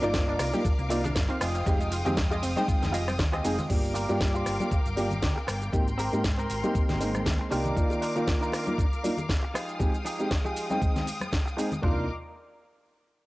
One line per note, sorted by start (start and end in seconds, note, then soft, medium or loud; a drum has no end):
0.00 0.35 G1 medium
0.00 0.50 A#3 loud
0.00 0.06 A#3 loud
0.00 0.14 D#4 loud
0.00 0.50 D#4 medium
0.00 0.14 F4 loud
0.00 0.50 F4 loud
0.00 1.37 A#4 medium
0.00 0.14 A#4 loud
0.00 0.50 D5 medium
0.00 0.15 D5 loud
0.00 3.66 F5 medium
0.00 1.39 D6 medium
0.00 closed hi-hat medium
0.00 high bongo medium
0.00 cabasa medium
0.00 shaker soft
0.14 0.23 C4 medium
0.14 kick loud
0.14 snare loud
0.14 closed hi-hat medium
0.14 cabasa medium
0.14 shaker soft
0.27 0.36 D4 loud
0.27 0.39 D#4 medium
0.27 0.39 F4 medium
0.27 0.40 A#4 medium
0.27 0.40 D5 loud
0.27 cabasa soft
0.39 0.50 C2 medium
0.39 0.49 A#3 loud
0.39 cross-stick medium
0.39 open hi-hat loud
0.39 ride medium
0.39 high bongo medium
0.39 shaker medium
0.53 0.65 A#3 medium
0.53 0.65 D4 medium
0.53 0.66 D#4 medium
0.53 0.66 F4 medium
0.53 0.61 G4 loud
0.53 muted clean electric guitar stroke soft
0.53 closed hi-hat medium
0.53 high conga medium
0.53 cabasa medium
0.53 shaker soft
0.65 0.69 D4 medium
0.65 muted fingered electric bass stroke soft
0.65 kick loud
0.65 closed hi-hat medium
0.65 high bongo medium
0.65 cabasa medium
0.65 shaker soft
0.79 1.11 C2 medium
0.79 0.86 A#3 medium
0.79 closed hi-hat soft
0.79 cabasa soft
0.90 0.99 A#3 medium
0.90 0.96 C4 medium
0.90 0.99 D4 medium
0.90 1.04 D#4 loud
0.90 1.00 D#4 medium
0.90 1.04 F4 loud
0.90 1.00 F4 loud
0.90 1.05 A#4 loud
0.90 1.05 D5 loud
0.90 open hi-hat loud
0.90 ride medium
0.90 shaker medium
1.04 1.07 D4 loud
1.04 closed hi-hat medium
1.04 high bongo medium
1.04 low conga medium
1.04 cabasa medium
1.04 shaker soft
1.15 1.27 G1 loud
1.15 1.25 A#3 medium
1.15 muted clean electric guitar stroke soft
1.15 kick loud
1.15 snare loud
1.15 closed hi-hat medium
1.15 cabasa medium
1.15 shaker soft
1.29 1.37 C4 loud
1.29 1.41 D#4 medium
1.29 1.39 F4 medium
1.29 1.40 A#4 medium
1.29 1.42 F5 loud
1.29 closed hi-hat soft
1.29 high bongo medium
1.29 cabasa soft
1.40 1.61 F1 medium
1.40 3.68 G#3 medium
1.40 1.92 F4 loud
1.40 1.50 F4 loud
1.40 1.92 G4 medium
1.40 1.92 G#4 medium
1.40 1.92 D#5 loud
1.40 3.67 G5 medium
1.40 3.68 D#6 loud
1.40 cross-stick medium
1.40 open hi-hat loud
1.40 ride medium
1.40 shaker medium
1.55 1.60 C4 medium
1.55 closed hi-hat medium
1.55 cabasa medium
1.55 shaker soft
1.66 2.01 F1 loud
1.66 1.76 G#3 loud
1.66 1.70 C4 medium
1.66 1.76 C4 medium
1.66 1.76 D#4 medium
1.66 1.76 G4 loud
1.66 kick loud
1.66 closed hi-hat medium
1.66 high bongo medium
1.66 cabasa medium
1.66 shaker soft
1.80 1.88 D#4 medium
1.80 closed hi-hat soft
1.80 cabasa soft
1.80 shaker soft
1.92 1.98 F4 medium
1.92 open hi-hat loud
1.92 ride medium
1.92 high bongo medium
1.92 shaker medium
2.05 2.39 F2 medium
2.05 2.13 G#3 medium
2.05 2.13 C4 medium
2.05 2.09 C4 loud
2.05 2.14 D#4 medium
2.05 2.17 F4 loud
2.05 2.17 G4 loud
2.05 2.14 G4 medium
2.05 2.18 G#4 loud
2.05 2.18 D#5 loud
2.05 closed hi-hat medium
2.05 low conga medium
2.05 cabasa medium
2.05 shaker soft
2.17 2.27 D#4 medium
2.17 kick loud
2.17 snare loud
2.17 closed hi-hat medium
2.17 cabasa medium
2.17 shaker soft
2.30 2.42 F4 medium
2.30 2.39 F4 loud
2.30 2.43 G4 medium
2.30 2.43 G#4 medium
2.30 2.43 D#5 loud
2.30 closed hi-hat soft
2.30 high bongo medium
2.30 cabasa soft
2.30 shaker soft
2.43 2.54 F1 loud
2.43 2.52 C4 loud
2.43 open hi-hat loud
2.43 ride medium
2.43 shaker medium
2.56 2.91 G#3 loud
2.56 2.91 C4 medium
2.56 2.91 D#4 medium
2.56 2.64 C5 loud
2.56 2.91 G5 loud
2.56 muted clean electric guitar stroke soft
2.56 closed hi-hat medium
2.56 high bongo medium
2.56 high conga medium
2.56 cabasa medium
2.56 shaker soft
2.68 2.72 F4 medium
2.68 kick loud
2.68 closed hi-hat medium
2.68 cabasa medium
2.68 shaker soft
2.82 3.15 F1 medium
2.82 2.90 C4 medium
2.82 snare soft
2.82 closed hi-hat soft
2.82 low conga medium
2.82 cabasa soft
2.82 shaker soft
2.92 3.07 F4 loud
2.92 3.00 F4 medium
2.92 3.07 G4 loud
2.92 3.08 G#4 loud
2.92 3.08 D#5 loud
2.92 open hi-hat loud
2.92 ride medium
2.92 high bongo medium
2.92 shaker medium
3.07 3.15 C4 loud
3.07 cross-stick medium
3.07 open hi-hat medium
3.07 high conga medium
3.07 cabasa medium
3.07 shaker soft
3.18 3.39 D#2 medium
3.18 3.23 F4 medium
3.18 muted clean electric guitar stroke soft
3.18 kick loud
3.18 snare loud
3.18 closed hi-hat medium
3.18 high bongo medium
3.18 cabasa medium
3.18 shaker soft
3.32 3.38 C4 loud
3.32 3.69 F4 medium
3.32 3.70 G4 medium
3.32 3.70 G#4 medium
3.32 3.70 D#5 loud
3.32 cross-stick medium
3.32 closed hi-hat soft
3.32 cabasa soft
3.44 3.55 F1 medium
3.44 3.53 G#3 medium
3.44 3.54 C4 medium
3.44 3.54 D#4 medium
3.44 3.48 G#4 medium
3.44 3.54 G#4 loud
3.44 open hi-hat loud
3.44 ride medium
3.44 shaker medium
3.58 3.64 C4 medium
3.58 closed hi-hat medium
3.58 high bongo medium
3.58 low conga medium
3.58 cabasa medium
3.58 shaker soft
3.69 4.04 G1 medium
3.69 4.06 A#3 medium
3.69 4.06 D4 medium
3.69 4.06 F4 medium
3.69 4.06 G4 medium
3.69 5.71 A#4 medium
3.69 5.71 F5 medium
3.69 7.47 G5 medium
3.69 5.71 D6 medium
3.69 kick loud
3.69 closed hi-hat medium
3.69 crash loud
3.69 high bongo medium
3.69 cabasa medium
3.69 shaker soft
3.84 closed hi-hat soft
3.84 cabasa soft
3.84 shaker soft
3.94 4.15 F4 loud
3.94 4.15 G4 loud
3.94 4.15 A#4 loud
3.94 open hi-hat loud
3.94 shaker medium
4.09 4.42 G2 medium
4.09 4.57 A#3 medium
4.09 4.57 D4 medium
4.09 4.57 F4 medium
4.09 4.57 G4 loud
4.09 closed hi-hat medium
4.09 high bongo medium
4.09 cabasa medium
4.09 shaker soft
4.21 kick loud
4.21 snare loud
4.21 closed hi-hat medium
4.21 cabasa medium
4.21 shaker soft
4.34 4.78 F4 medium
4.34 4.79 G4 medium
4.34 4.79 C5 medium
4.34 high bongo soft
4.34 cabasa soft
4.34 shaker soft
4.46 4.57 G1 medium
4.46 cross-stick medium
4.46 open hi-hat loud
4.46 shaker medium
4.59 4.72 A#3 medium
4.59 4.72 D4 medium
4.59 4.72 F4 medium
4.59 4.72 G4 medium
4.59 closed hi-hat medium
4.59 high conga medium
4.59 cabasa medium
4.59 shaker soft
4.71 muted fingered electric bass stroke soft
4.71 kick loud
4.71 closed hi-hat medium
4.71 high bongo medium
4.71 cabasa medium
4.71 shaker soft
4.86 5.18 G1 medium
4.86 closed hi-hat soft
4.86 cabasa soft
4.86 shaker soft
4.96 5.06 A#3 medium
4.96 5.06 D4 medium
4.96 5.06 F4 medium
4.96 5.06 G4 medium
4.96 open hi-hat loud
4.96 high bongo medium
4.96 high conga medium
4.96 shaker medium
5.11 closed hi-hat medium
5.11 low conga medium
5.11 cabasa medium
5.11 shaker soft
5.22 5.33 D2 medium
5.22 muted clean electric guitar stroke soft
5.22 kick loud
5.22 snare loud
5.22 closed hi-hat medium
5.22 cabasa medium
5.22 shaker soft
5.36 muted clean electric guitar stroke medium
5.36 high bongo medium
5.36 cabasa soft
5.47 5.68 G1 medium
5.47 muted clean electric guitar stroke loud
5.47 cross-stick medium
5.47 open hi-hat loud
5.47 shaker medium
5.61 muted clean electric guitar stroke soft
5.61 closed hi-hat soft
5.61 high bongo medium
5.61 cabasa medium
5.61 shaker soft
5.72 6.08 G#1 loud
5.72 5.82 A#3 loud
5.72 5.82 C4 medium
5.72 5.83 D#4 medium
5.72 5.83 G4 loud
5.72 7.50 A#4 medium
5.72 7.50 C6 medium
5.72 kick loud
5.72 closed hi-hat medium
5.72 cabasa medium
5.72 shaker soft
5.87 closed hi-hat soft
5.87 cabasa soft
5.87 shaker soft
5.98 6.18 C4 loud
5.98 6.19 G4 loud
5.98 6.19 A#4 loud
5.98 open hi-hat loud
5.98 high bongo medium
5.98 shaker medium
6.12 6.46 G#2 medium
6.12 6.20 A#3 medium
6.12 6.20 C4 medium
6.12 6.20 D#4 medium
6.12 6.20 G4 medium
6.12 closed hi-hat medium
6.12 cabasa medium
6.12 shaker soft
6.24 kick loud
6.24 snare loud
6.24 closed hi-hat medium
6.24 high bongo medium
6.24 cabasa medium
6.24 shaker soft
6.38 6.82 C4 medium
6.38 6.82 G4 medium
6.38 6.83 A#4 medium
6.38 cabasa soft
6.38 shaker soft
6.50 6.61 G#1 medium
6.50 open hi-hat loud
6.50 shaker medium
6.63 6.97 A#3 medium
6.63 6.98 C4 medium
6.63 6.98 D#4 medium
6.63 6.98 G4 loud
6.63 closed hi-hat medium
6.63 high bongo medium
6.63 high conga medium
6.63 cabasa medium
6.63 shaker soft
6.75 kick loud
6.75 closed hi-hat medium
6.75 cabasa medium
6.75 shaker soft
6.89 7.22 G#1 medium
6.89 snare soft
6.89 closed hi-hat soft
6.89 high bongo soft
6.89 low conga loud
6.89 cabasa soft
6.89 shaker soft
7.00 7.49 G#3 medium
7.00 7.48 A#3 medium
7.00 7.48 C4 medium
7.00 7.49 D#4 medium
7.00 open hi-hat loud
7.00 shaker medium
7.14 cross-stick medium
7.14 closed hi-hat medium
7.14 high conga medium
7.14 cabasa medium
7.14 shaker soft
7.25 7.37 D#2 medium
7.25 muted clean electric guitar stroke soft
7.25 kick loud
7.25 snare loud
7.25 closed hi-hat medium
7.25 high bongo medium
7.25 cabasa medium
7.25 shaker soft
7.39 muted clean electric guitar stroke medium
7.39 cabasa soft
7.50 7.72 C2 medium
7.50 7.74 A#3 medium
7.50 7.93 D4 medium
7.50 7.74 D4 medium
7.50 7.93 D#4 medium
7.50 7.74 D#4 medium
7.50 7.93 F4 medium
7.50 7.74 G4 medium
7.50 9.53 A#4 medium
7.50 7.94 A#4 loud
7.50 11.80 F5 medium
7.50 9.53 D6 medium
7.50 open hi-hat loud
7.50 high bongo medium
7.50 shaker medium
7.65 closed hi-hat medium
7.65 low conga medium
7.65 cabasa medium
7.65 shaker soft
7.76 8.13 D#3 medium
7.76 8.12 A#3 medium
7.76 8.13 F4 medium
7.76 8.13 D5 medium
7.76 kick loud
7.76 closed hi-hat medium
7.76 cabasa medium
7.76 shaker soft
7.90 closed hi-hat soft
7.90 high bongo medium
7.90 cabasa soft
7.90 shaker soft
8.01 8.21 D4 loud
8.01 8.22 D#4 loud
8.01 8.22 F4 loud
8.01 8.22 A#4 loud
8.01 open hi-hat loud
8.01 shaker medium
8.15 8.64 D#3 medium
8.15 8.63 A#3 loud
8.15 8.64 F4 loud
8.15 8.63 D5 medium
8.15 closed hi-hat soft
8.15 high bongo soft
8.15 cabasa medium
8.15 shaker soft
8.27 kick loud
8.27 snare loud
8.27 closed hi-hat medium
8.27 cabasa medium
8.27 shaker soft
8.41 8.85 D4 medium
8.41 8.85 D#4 medium
8.41 8.86 F4 medium
8.41 8.86 A#4 medium
8.41 cabasa soft
8.41 shaker soft
8.52 cross-stick medium
8.52 open hi-hat loud
8.52 high bongo medium
8.52 shaker medium
8.66 8.79 A#3 medium
8.66 8.79 D4 medium
8.66 8.79 D#4 medium
8.66 8.79 F4 medium
8.66 closed hi-hat soft
8.66 high conga medium
8.66 cabasa medium
8.66 shaker soft
8.78 kick loud
8.78 closed hi-hat medium
8.78 high bongo medium
8.78 cabasa medium
8.78 shaker soft
8.92 closed hi-hat soft
8.92 cabasa soft
8.92 shaker soft
9.03 9.13 A#3 medium
9.03 9.13 D4 medium
9.03 9.13 D#4 medium
9.03 9.13 F4 loud
9.03 open hi-hat loud
9.03 high conga medium
9.03 shaker medium
9.17 closed hi-hat medium
9.17 high bongo medium
9.17 low conga medium
9.17 cabasa medium
9.17 shaker soft
9.29 muted clean electric guitar stroke soft
9.29 kick loud
9.29 snare loud
9.29 closed hi-hat medium
9.29 cabasa medium
9.29 shaker soft
9.42 muted clean electric guitar stroke medium
9.42 high bongo medium
9.42 cabasa soft
9.54 9.96 F3 medium
9.54 11.81 G#3 medium
9.54 9.96 D#4 medium
9.54 9.97 G4 medium
9.54 9.97 G#4 loud
9.54 11.81 G5 medium
9.54 11.81 D#6 medium
9.54 cross-stick medium
9.54 open hi-hat loud
9.54 shaker medium
9.68 closed hi-hat soft
9.68 cabasa medium
9.68 shaker soft
9.79 9.89 G#3 medium
9.79 9.89 C4 medium
9.79 9.89 D#4 medium
9.79 9.89 G4 loud
9.79 kick loud
9.79 closed hi-hat medium
9.79 high bongo medium
9.79 cabasa medium
9.79 shaker soft
9.94 closed hi-hat soft
9.94 cabasa soft
9.94 shaker soft
10.04 10.25 F3 loud
10.04 10.25 D#4 loud
10.04 10.26 G4 loud
10.04 10.26 G#4 loud
10.04 open hi-hat loud
10.04 high bongo medium
10.04 shaker medium
10.19 10.27 G#3 medium
10.19 10.27 C4 medium
10.19 10.27 D#4 medium
10.19 10.27 G4 medium
10.19 closed hi-hat soft
10.19 cabasa medium
10.19 shaker soft
10.31 kick loud
10.31 snare loud
10.31 closed hi-hat medium
10.31 cabasa medium
10.31 shaker soft
10.44 10.88 F3 medium
10.44 10.89 D#4 medium
10.44 10.89 G4 medium
10.44 10.89 G#4 medium
10.44 high bongo medium
10.44 cabasa soft
10.44 shaker soft
10.56 open hi-hat loud
10.56 shaker medium
10.69 11.04 G#3 medium
10.69 11.04 C4 medium
10.69 11.05 D#4 medium
10.69 11.05 G5 medium
10.69 closed hi-hat soft
10.69 high bongo soft
10.69 high conga medium
10.69 cabasa medium
10.69 shaker soft
10.81 kick loud
10.81 closed hi-hat medium
10.81 cabasa medium
10.81 shaker soft
10.96 snare soft
10.96 closed hi-hat soft
10.96 low conga medium
10.96 cabasa soft
10.96 shaker soft
11.07 open hi-hat loud
11.07 high bongo medium
11.07 shaker medium
11.20 cross-stick medium
11.20 closed hi-hat medium
11.20 high conga medium
11.20 cabasa medium
11.20 shaker soft
11.31 muted clean electric guitar stroke soft
11.31 kick loud
11.31 snare loud
11.31 closed hi-hat medium
11.31 high bongo soft
11.31 cabasa medium
11.31 shaker soft
11.46 muted clean electric guitar stroke medium
11.46 cabasa soft
11.46 shaker soft
11.57 11.67 G#3 medium
11.57 11.67 C4 medium
11.57 11.67 D#4 medium
11.57 11.67 G#4 loud
11.57 muted clean electric guitar stroke loud
11.57 open hi-hat loud
11.57 shaker medium
11.71 muted clean electric guitar stroke soft
11.71 closed hi-hat soft
11.71 high bongo medium
11.71 low conga medium
11.71 cabasa medium
11.71 shaker soft
11.82 12.07 C2 medium
11.82 12.02 A#3 medium
11.82 12.07 D4 medium
11.82 12.03 D4 medium
11.82 12.07 D#4 medium
11.82 12.03 D#4 medium
11.82 12.07 F4 medium
11.82 12.04 F4 medium
11.82 12.07 A#4 medium
11.82 12.07 D#5 medium
11.82 12.07 F5 medium
11.82 12.07 D6 medium
11.82 kick loud
11.82 floor tom loud